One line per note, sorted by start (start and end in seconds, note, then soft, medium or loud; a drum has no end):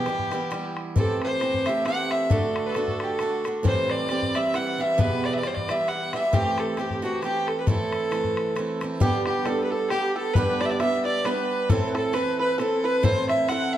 0.00 0.77 G4 medium
0.06 0.30 E3 soft
0.06 0.31 G3 soft
0.06 0.32 B3 medium
0.06 0.33 E4 medium
0.06 bodhran medium
0.19 bodhran soft
0.31 0.49 E3 medium
0.31 0.50 G3 medium
0.31 0.52 B3 medium
0.31 0.53 E4 medium
0.31 bodhran soft
0.51 0.94 E3 medium
0.51 0.96 G3 medium
0.51 0.97 B3 medium
0.51 0.97 E4 medium
0.51 bodhran medium
0.77 bodhran medium
0.96 1.39 E3 medium
0.96 1.41 A3 medium
0.96 1.41 C4 medium
0.96 1.42 G4 medium
0.96 1.21 A4 medium
0.96 bodhran medium
1.22 1.68 C5 medium
1.22 bodhran medium
1.40 1.64 E3 medium
1.40 1.66 A3 soft
1.40 1.67 C4 medium
1.40 1.67 G4 medium
1.40 bodhran medium
1.54 bodhran soft
1.66 1.84 E3 medium
1.66 1.85 A3 medium
1.66 1.87 C4 medium
1.66 1.87 G4 medium
1.66 1.85 E5 medium
1.66 bodhran medium
1.85 2.29 E3 soft
1.85 2.30 A3 soft
1.85 2.31 C4 soft
1.85 2.32 G4 medium
1.85 2.13 F#5 loud
1.85 bodhran medium
2.11 2.33 E5 medium
2.11 bodhran medium
2.30 2.73 D3 medium
2.30 2.76 A3 medium
2.30 2.76 D4 medium
2.30 2.76 F#4 medium
2.30 2.68 A4 medium
2.30 bodhran medium
2.56 bodhran medium
2.66 3.05 A4 medium
2.66 2.70 B4 medium
2.74 3.18 D3 soft
2.74 3.19 A3 medium
2.74 3.20 D4 medium
2.74 3.21 F#4 medium
2.74 bodhran medium
2.88 bodhran soft
3.00 3.07 G4 medium
3.00 bodhran medium
3.05 3.45 A4 medium
3.19 3.43 D3 soft
3.19 3.44 A3 soft
3.19 3.45 D4 soft
3.19 3.46 F#4 medium
3.19 bodhran medium
3.44 3.64 D3 soft
3.44 3.64 A3 soft
3.44 3.65 D4 medium
3.44 3.65 F#4 medium
3.44 bodhran medium
3.63 4.09 A2 medium
3.63 4.08 E3 medium
3.63 4.09 G3 medium
3.63 4.10 C4 medium
3.63 4.11 G4 medium
3.63 3.92 C5 medium
3.63 bodhran medium
3.90 4.37 D5 medium
3.90 bodhran medium
4.08 4.33 E3 soft
4.08 4.34 G3 soft
4.08 4.35 C4 medium
4.08 4.36 G4 medium
4.08 bodhran medium
4.22 bodhran soft
4.34 4.53 E3 soft
4.34 4.54 G3 medium
4.34 4.55 C4 medium
4.34 4.55 G4 medium
4.34 4.56 E5 medium
4.34 bodhran medium
4.54 4.77 E3 medium
4.54 4.79 G3 soft
4.54 4.79 C4 medium
4.54 4.81 G4 soft
4.54 4.82 F#5 medium
4.54 bodhran medium
4.78 4.98 E3 soft
4.78 4.98 G3 soft
4.78 4.99 C4 soft
4.78 4.99 G4 medium
4.78 5.02 E5 medium
4.98 5.43 E2 medium
4.98 5.43 B2 medium
4.98 5.43 E3 medium
4.98 5.44 G3 medium
4.98 5.44 B3 medium
4.98 5.46 G4 medium
4.98 5.27 B4 loud
4.98 bodhran medium
5.24 5.35 D5 medium
5.24 bodhran medium
5.33 5.39 E5 medium
5.38 5.49 D5 medium
5.43 5.67 E3 medium
5.43 5.68 G3 soft
5.43 5.69 B3 soft
5.43 5.70 G4 medium
5.43 5.56 C5 medium
5.43 bodhran medium
5.54 5.72 D5 medium
5.54 bodhran soft
5.68 5.86 E3 medium
5.68 5.87 G3 soft
5.68 5.88 B3 soft
5.68 5.89 G4 medium
5.68 5.90 E5 medium
5.68 bodhran medium
5.87 6.12 E3 soft
5.87 6.13 G3 soft
5.87 6.14 B3 soft
5.87 6.15 G4 soft
5.87 6.14 F#5 medium
5.87 bodhran soft
6.13 6.32 E3 medium
6.13 6.33 G3 medium
6.13 6.34 B3 medium
6.13 6.34 G4 medium
6.13 6.35 E5 medium
6.13 bodhran medium
6.33 6.77 E3 medium
6.33 6.78 A3 medium
6.33 6.79 C4 medium
6.33 6.61 G4 loud
6.33 6.79 G4 medium
6.33 bodhran medium
6.58 6.79 A4 medium
6.58 bodhran medium
6.77 7.01 E3 soft
6.77 7.02 A3 soft
6.77 7.04 C4 medium
6.77 7.03 G4 medium
6.77 7.05 G4 medium
6.77 bodhran soft
6.90 bodhran soft
7.02 7.21 E3 medium
7.02 7.23 A3 medium
7.02 7.23 C4 medium
7.02 7.21 F#4 medium
7.02 7.24 G4 medium
7.22 7.67 E3 medium
7.22 7.67 A3 medium
7.22 7.67 C4 soft
7.22 7.48 G4 medium
7.22 7.69 G4 soft
7.22 bodhran medium
7.47 7.59 A4 medium
7.47 bodhran soft
7.60 7.68 B4 medium
7.66 8.12 A2 medium
7.66 8.10 E3 medium
7.66 8.11 A3 medium
7.66 8.12 C4 medium
7.66 8.13 E4 medium
7.66 8.82 A4 loud
7.66 bodhran medium
7.92 bodhran medium
8.11 8.54 E3 soft
8.11 8.55 A3 medium
8.11 8.57 C4 soft
8.11 8.58 E4 medium
8.11 bodhran medium
8.24 bodhran soft
8.37 bodhran medium
8.55 8.80 E3 soft
8.55 8.81 A3 medium
8.55 8.82 C4 soft
8.55 8.83 E4 medium
8.55 bodhran medium
8.81 9.01 E3 soft
8.81 9.01 A3 medium
8.81 9.02 C4 soft
8.81 9.02 E4 medium
8.81 bodhran medium
9.00 9.46 G2 medium
9.00 9.46 D3 medium
9.00 9.44 G3 medium
9.00 9.46 B3 medium
9.00 9.46 D4 medium
9.00 9.25 G4 medium
9.00 9.47 G4 medium
9.00 bodhran medium
9.26 9.46 G4 medium
9.26 9.45 G4 medium
9.26 9.48 G4 medium
9.26 bodhran medium
9.45 9.90 G3 medium
9.45 9.91 B3 soft
9.45 9.91 D4 medium
9.45 9.92 G4 medium
9.45 9.63 A4 medium
9.45 9.70 A4 medium
9.45 9.71 A4 medium
9.45 bodhran medium
9.64 9.72 B4 soft
9.70 9.89 A4 medium
9.70 9.92 A4 medium
9.70 9.90 A4 medium
9.90 10.35 G3 soft
9.90 10.36 B3 soft
9.90 10.36 D4 medium
9.90 10.14 G4 medium
9.90 10.16 G4 medium
9.90 10.15 G4 soft
9.90 10.36 G4 medium
9.90 bodhran medium
10.16 10.34 A4 medium
10.16 10.37 A4 medium
10.16 10.35 A4 medium
10.34 10.80 G2 medium
10.34 10.81 D3 medium
10.34 10.78 G3 medium
10.34 10.80 B3 medium
10.34 10.81 D4 medium
10.34 10.81 G4 medium
10.34 10.62 B4 medium
10.34 10.63 B4 medium
10.34 10.59 B4 medium
10.34 bodhran medium
10.60 10.67 D5 medium
10.60 10.70 D5 medium
10.60 10.71 D5 medium
10.60 bodhran medium
10.65 10.71 E5 medium
10.70 10.79 D5 medium
10.70 10.80 D5 medium
10.80 11.23 G3 medium
10.80 11.24 B3 medium
10.80 11.26 D4 medium
10.80 11.26 G4 medium
10.80 11.04 E5 medium
10.80 11.05 E5 medium
10.80 11.07 E5 medium
10.80 bodhran medium
11.05 11.27 D5 medium
11.05 11.23 D5 medium
11.05 11.25 D5 medium
11.24 11.69 G3 medium
11.24 11.70 B3 soft
11.24 11.71 D4 medium
11.24 11.71 G4 medium
11.24 11.71 B4 medium
11.24 11.67 B4 medium
11.24 bodhran medium
11.69 12.14 A2 medium
11.69 12.12 E3 medium
11.69 12.13 C4 medium
11.69 12.14 E4 medium
11.69 11.95 A4 medium
11.69 11.87 A4 medium
11.69 11.93 A4 medium
11.69 12.15 A4 medium
11.69 bodhran medium
11.88 11.97 B4 medium
11.95 12.13 A4 medium
11.95 12.16 A4 medium
11.95 bodhran medium
12.13 12.57 E3 medium
12.13 12.58 C4 medium
12.13 12.59 E4 medium
12.13 12.60 A4 medium
12.13 12.38 B4 medium
12.13 12.39 B4 medium
12.13 bodhran medium
12.39 12.58 B4 medium
12.39 12.60 B4 medium
12.58 13.02 E3 soft
12.58 13.03 C4 medium
12.58 13.04 E4 medium
12.58 12.82 A4 medium
12.58 12.83 A4 medium
12.58 12.87 A4 medium
12.58 13.04 A4 medium
12.58 bodhran soft
12.84 13.02 B4 medium
12.84 13.05 B4 medium
13.03 13.48 A2 medium
13.03 13.47 E3 medium
13.03 13.48 C4 medium
13.03 13.49 E4 medium
13.03 13.49 A4 medium
13.03 13.30 C5 medium
13.03 13.28 C5 loud
13.03 13.28 C5 medium
13.03 bodhran medium
13.28 13.50 E5 medium
13.28 13.47 E5 medium
13.28 bodhran medium
13.48 13.78 E3 soft
13.48 13.78 C4 medium
13.48 13.78 E4 medium
13.48 13.78 A4 medium
13.48 13.74 F#5 medium
13.48 13.75 F#5 medium
13.48 13.78 F#5 medium
13.48 bodhran medium
13.73 13.78 E5 loud
13.73 13.78 E5 medium